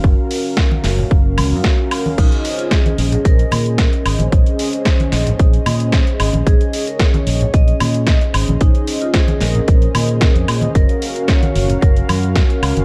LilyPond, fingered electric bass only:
\new Staff \with { instrumentName = "Fingered electric bass" } { \clef bass \time 4/4 \key bes \minor \tempo 4 = 112 ges,,16 r4 r16 ges,,16 r16 ges,,8 des,16 ges,16 r4 | bes,,16 r4 r16 bes,,16 r16 bes,,16 r16 bes,8 r8 aes,,16 bes,,16 | bes,,16 r4 r16 bes,,16 r16 bes,,16 r16 bes,8 r8 aes,,16 bes,,16 | bes,,16 r4 r16 bes,,16 r16 bes,,16 r16 bes,8 r8 aes,,16 bes,,16 |
bes,,16 r4 r16 bes,,16 r16 bes,,16 r16 bes,8 r16 f,16 bes,16 r16 | ges,,16 r4 r16 ges,,16 r16 ges,,16 r16 ges,8 r8 des,16 ges,,16 | }